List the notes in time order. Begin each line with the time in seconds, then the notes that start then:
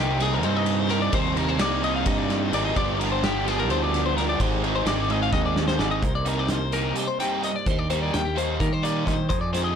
Already playing: C2 C3 G3 A#3 D#4 A#4
0.00 C4 D#4 G4
0.19 G3 C4 D#4 G#4, snare, ride
0.34 A#4
0.43 G2 D#4 C5, ride
0.56 D#5
0.65 G2, ride
0.79 C5
0.89 C3 G3 C4 D#4 A#4, snare, ride
1.02 D5
1.11 D#2 C3 G3 C4 A#4 C5, kick, ride
1.16 D#4
1.36 G3 C4 D#4 A#4, ride
1.49 C5
1.59 C2 C3 G3 A#3 C4 D#4 D5, snare, ride
1.82 G3 C4 D#4 D#5, ride
1.96 F5
2.06 G2 D#4 D#5, kick, ride
2.18 D5
2.30 G2, snare, ride
2.43 C5
2.52 G#1 C3 G3 C4 D#4 A#4 D5, ride
2.65 D#5
2.76 G1 G2 D3 F3 G3 B3 D4 F4 G4 D5, kick, ride
3.00 F3 B3 D4 F4 A#4, ride
3.12 C5
3.24 D3 F3 B3 D4 G4, snare, ride
3.45 F3 G3 B3 D4 G#4, snare, ride
3.60 A#4
3.69 D2 D4 C5, ride
3.83 F4 D5
3.94 D3, snare, ride
4.06 C5
4.17 G2 D3 F3 B3 D4 G4 A#4, snare, ride
4.29 D5
4.40 G#1 G#2 D#3 G#3 C4 D#4 G4 C5, kick, ride
4.63 G#3 C4 D#4 A#4, ride
4.76 C5
4.86 G#1 D#3 G#3 C4 D#4 D5, snare, ride
5.09 G#3 C4 D#4 D#5, ride
5.23 F5
5.32 D#2 D#4 D#5, kick, snare
5.46 D5
5.56 D#3, snare
5.68 C5, snare
5.78 G#1 G#2 D#3 G#3 C4 D#4 G4 D5, snare
5.91 D#5
6.02 C2 C3 A#3 D#4 A#4 C5, kick, closed hi-hat
6.15 D5
6.26 C3 G3 C4 D#4 A#4, closed hi-hat
6.39 D5
6.48 C5, snare, closed hi-hat
6.53 A#3
6.72 C3 G3 C4 D#4 A#4, closed hi-hat
6.96 G4 C5, closed hi-hat
7.08 C5
7.20 G2 C3 G3 C4 D#4 G5, closed hi-hat
7.44 D#5, closed hi-hat
7.56 D5
7.66 D#2 D#3 D4 G4 C5, kick, closed hi-hat
7.71 D#4
7.79 D5
7.90 D#3 G3 A#3 D#4 C5, closed hi-hat
8.02 D5
8.14 D#2 G5, snare, closed hi-hat
8.25 G4
8.36 D#3 G3 A#3 D#4 C5, closed hi-hat
8.60 D#3 G4 A#4, kick, closed hi-hat
8.73 C5
8.83 A#2 D#3 G3 A#3 D#4 D5, closed hi-hat
9.06 D#3 C5, kick, snare, closed hi-hat
9.29 F2 F3 D#4 G#4 C5, kick, closed hi-hat
9.41 D5
9.53 C3 F3 G#3 C4 G#4 C5, snare, closed hi-hat
9.64 D#5